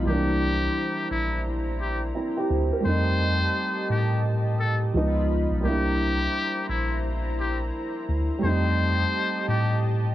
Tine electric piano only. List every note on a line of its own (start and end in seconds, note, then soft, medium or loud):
0.07 0.68 C2 loud
1.11 2.11 A#1 medium
2.51 2.69 D2 loud
2.85 3.47 F2 loud
3.90 4.90 A2 medium
4.95 5.44 C#2 loud
5.51 5.62 B1 medium
5.64 6.26 C2 loud
6.69 7.69 A#1 medium
8.09 8.28 D2 medium
8.44 9.05 F2 loud
9.49 10.15 A2 medium